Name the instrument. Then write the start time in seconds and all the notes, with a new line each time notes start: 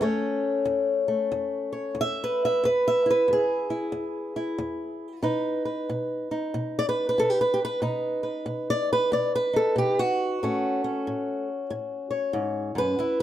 steel-string acoustic guitar
0.01 E2 A3 C#4 C#5
0.65 E2
1.08 A3
1.32 E2
1.73 C#5
1.95 E2
2.01 E5
2.24 B4
2.45 E5
2.64 E2 B4
2.88 E5
3.06 E4
3.10 B4
3.28 E2
3.33 G#4
3.70 E4
3.92 E2
4.36 E4
4.58 E2
5.22 B2 D#4 B4
5.65 B4
5.90 B2
6.31 D#4
6.54 B2
6.79 D5
6.89 B4
7.09 B4
7.18 B2 A4
7.30 G4
7.41 B4
7.54 G4
7.65 B4
7.82 B2 D#4 B4
8.23 B4
8.46 B2
8.70 D5
8.93 B4
9.12 B2 D5
9.35 B4
9.53 D#4 A4
9.76 B2 G4
9.99 F#4
10.43 A2 A3 C#4
10.84 C#4
11.07 A2
11.70 A2
12.11 C#5
12.33 G#2
12.75 F#2 B4
12.99 E2 E4